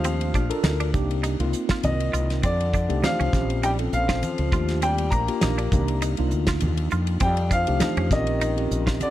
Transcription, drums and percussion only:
0.04 hi-hat pedal, ride, muted conga
0.21 ride
0.34 kick, hi-hat pedal, muted conga
0.51 ride
0.64 snare, hi-hat pedal, ride, high conga
0.80 ride
0.94 kick, hi-hat pedal, muted conga, high conga, low conga
1.11 ride
1.24 hi-hat pedal, ride, muted conga
1.40 ride
1.53 hi-hat pedal
1.69 kick, snare, ride
1.83 hi-hat pedal, ride, high conga, low conga
2.00 ride
2.14 hi-hat pedal
2.30 snare, ride
2.43 kick, hi-hat pedal, ride, muted conga
2.61 ride
2.74 kick, hi-hat pedal, muted conga
2.90 ride
3.04 snare, hi-hat pedal, ride, high conga
3.20 ride
3.33 kick, snare, hi-hat pedal, muted conga, high conga
3.50 ride
3.63 hi-hat pedal, ride, muted conga
3.79 ride
3.93 hi-hat pedal
4.09 kick, snare, ride
4.23 hi-hat pedal, ride, high conga
4.38 ride
4.52 kick, hi-hat pedal
4.68 snare, ride
4.82 hi-hat pedal, ride, muted conga
4.98 ride
5.11 kick, hi-hat pedal, muted conga
5.28 ride
5.41 snare, hi-hat pedal, ride, high conga
5.58 ride
5.72 kick, hi-hat pedal, muted conga, high conga, low conga
5.88 ride
6.02 hi-hat pedal, ride, muted conga
6.17 ride
6.31 hi-hat pedal
6.47 kick, snare, ride
6.60 hi-hat pedal, ride, high conga, low conga
6.77 ride
6.91 hi-hat pedal
7.07 ride
7.20 kick, hi-hat pedal, ride, muted conga
7.37 ride
7.51 kick, hi-hat pedal, muted conga
7.67 ride
7.80 snare, hi-hat pedal, ride, high conga
7.97 ride
8.11 kick, snare, hi-hat pedal, muted conga, high conga
8.27 ride
8.41 hi-hat pedal, ride, muted conga
8.58 ride
8.71 hi-hat pedal
8.87 kick, snare, ride
9.00 hi-hat pedal, ride, high conga

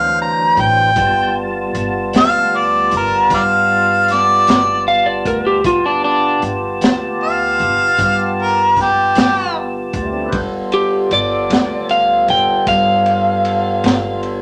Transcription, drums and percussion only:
0.57 kick, closed hi-hat
0.96 kick, closed hi-hat
1.75 closed hi-hat
2.13 snare, closed hi-hat
2.91 closed hi-hat
3.30 kick, closed hi-hat
4.08 snare, closed hi-hat
4.47 snare, closed hi-hat
5.25 kick, closed hi-hat
5.64 kick, closed hi-hat
6.42 closed hi-hat
6.81 snare, closed hi-hat
7.59 closed hi-hat
7.98 kick, closed hi-hat
8.77 kick, snare, closed hi-hat
9.15 snare, closed hi-hat
9.93 kick, closed hi-hat
10.32 kick, ride
10.72 ride
11.11 ride
11.50 snare, ride
11.89 ride
12.28 ride
12.67 kick, ride
13.06 ride
13.45 ride
13.84 snare, ride
14.23 ride

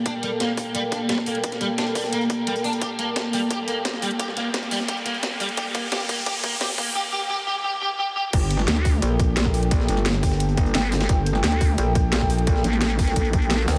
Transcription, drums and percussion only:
0.06 kick, closed hi-hat
0.23 closed hi-hat
0.40 snare, closed hi-hat
0.57 kick, closed hi-hat, open hi-hat
0.75 closed hi-hat
0.92 kick, closed hi-hat
1.09 snare, closed hi-hat
1.18 kick, snare
1.26 closed hi-hat, open hi-hat
1.35 closed hi-hat
1.44 kick, closed hi-hat
1.52 snare, closed hi-hat
1.61 snare, closed hi-hat
1.78 snare, closed hi-hat
1.87 closed hi-hat
1.95 kick, open hi-hat
2.04 snare
2.13 closed hi-hat
2.21 closed hi-hat
2.30 kick, closed hi-hat
2.47 closed hi-hat
2.56 closed hi-hat
2.64 open hi-hat
2.73 closed hi-hat
2.82 kick, closed hi-hat
2.99 closed hi-hat
3.16 kick, snare, closed hi-hat
3.33 closed hi-hat, open hi-hat
3.51 kick, closed hi-hat
3.68 closed hi-hat
3.85 kick, snare, closed hi-hat
3.94 snare
4.02 closed hi-hat, open hi-hat
4.11 closed hi-hat
4.19 kick, closed hi-hat
4.28 snare
4.37 snare, closed hi-hat
4.54 kick, snare, closed hi-hat
4.63 closed hi-hat
4.71 open hi-hat
4.80 snare
4.88 kick, closed hi-hat
4.97 closed hi-hat
5.06 closed hi-hat
5.14 closed hi-hat
5.23 kick, snare, closed hi-hat
5.40 closed hi-hat, open hi-hat
5.49 closed hi-hat
5.57 kick, closed hi-hat
5.75 kick, closed hi-hat
5.92 kick, snare, closed hi-hat
6.09 kick, closed hi-hat, open hi-hat
6.26 kick, closed hi-hat
6.44 kick, closed hi-hat
6.61 kick, snare, closed hi-hat
6.70 snare
6.78 kick, closed hi-hat, open hi-hat
6.87 closed hi-hat
8.33 kick, closed hi-hat, crash
8.51 closed hi-hat
8.59 snare
8.68 snare, closed hi-hat
8.76 snare
8.85 kick, closed hi-hat, open hi-hat
9.02 closed hi-hat
9.20 kick, closed hi-hat
9.37 snare, closed hi-hat
9.45 kick, snare
9.54 closed hi-hat, open hi-hat
9.63 closed hi-hat
9.71 kick, closed hi-hat
9.80 snare
9.88 snare, closed hi-hat
9.97 snare
10.06 snare, closed hi-hat
10.14 snare, closed hi-hat
10.23 kick, open hi-hat
10.32 snare
10.40 closed hi-hat
10.49 closed hi-hat
10.57 kick, closed hi-hat
10.66 closed hi-hat
10.75 snare, closed hi-hat
10.92 snare, closed hi-hat, open hi-hat
11.01 snare, closed hi-hat
11.09 kick, closed hi-hat
11.26 closed hi-hat
11.35 snare
11.44 snare, closed hi-hat
11.52 snare
11.61 kick, closed hi-hat, open hi-hat
11.78 closed hi-hat
11.95 kick, closed hi-hat
12.13 snare, closed hi-hat
12.21 kick, snare
12.30 closed hi-hat, open hi-hat
12.39 closed hi-hat
12.47 kick, closed hi-hat
12.56 snare
12.64 snare, closed hi-hat
12.73 snare
12.82 snare, closed hi-hat
12.90 snare, closed hi-hat
12.99 kick, open hi-hat
13.07 snare, closed hi-hat
13.16 kick, closed hi-hat
13.25 closed hi-hat
13.33 kick, closed hi-hat
13.42 closed hi-hat
13.51 snare, closed hi-hat
13.68 snare, closed hi-hat, open hi-hat

